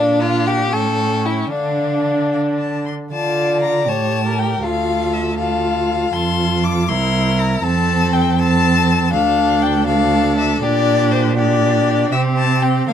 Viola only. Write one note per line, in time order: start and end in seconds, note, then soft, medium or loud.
0.00 0.69 D4 medium
0.73 1.54 C#4 soft
1.52 2.91 D4 soft
3.12 3.84 F4 soft
3.87 4.65 G4 soft
4.63 5.39 F4 medium
5.39 6.13 F4 medium
6.14 6.91 F4 soft
6.90 7.63 E4 medium
7.64 8.37 C4 medium
8.38 9.12 C4 medium
9.13 9.86 D4 medium
9.88 10.61 D4 medium
10.63 11.36 D4 medium
11.38 12.14 D4 medium
12.12 12.90 C4 medium
12.88 12.93 A#3 medium